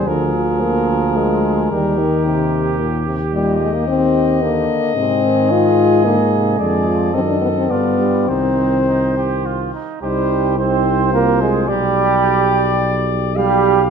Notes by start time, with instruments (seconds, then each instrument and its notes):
Already playing: flugelhorn G#4
0.07 bass trombone D2, trombone D3, french horn F3, trumpet A#4
0.35 trombone F3
0.61 french horn A#3
1.16 french horn G#3
1.71 bass trombone D#2, trombone D#3, french horn G3, flugelhorn G4
1.98 french horn D#3
2.26 trombone C3
2.80 trombone A#2
3.07 trombone C3
3.33 trombone A#2, french horn G3, trumpet D#5
3.60 french horn G#3
3.74 french horn A#3
3.87 trombone D#3, french horn C4
4.42 trombone D3, french horn A#3
4.96 bass trombone G#2, trombone C3, french horn C4, flugelhorn G#4
5.25 trombone D#3
5.51 french horn F4
6.05 trombone D3, french horn A#3
6.33 trombone C3
6.59 bass trombone F2, trombone D3, french horn G#3, trumpet D5
6.88 trombone F3
7.14 bass trombone F#2, trombone D#3, french horn C4, flugelhorn A4, trumpet D#5
7.28 french horn D4
7.42 french horn B3
7.56 french horn C4
7.69 bass trombone G2, trombone D3, french horn B3, flugelhorn F4, trumpet D5
8.00 trombone G3
8.28 bass trombone C2, trombone D#3, french horn C4, flugelhorn D#4, trumpet C5
8.87 flugelhorn D#4
9.17 flugelhorn G4
9.46 flugelhorn F4
9.74 flugelhorn D#4
10.02 bass trombone C2, trombone G3, french horn D#4, flugelhorn G4, trumpet C5
10.58 trombone C4, french horn D#4, trumpet C5, flugelhorn C5
11.13 trombone A#3, french horn F4, flugelhorn A#4
11.41 trombone G#3, flugelhorn G#4
11.68 bass trombone B1, trombone G3, french horn G4, flugelhorn G4, trumpet D5
13.36 trombone G3, french horn G4, flugelhorn G4, trumpet F5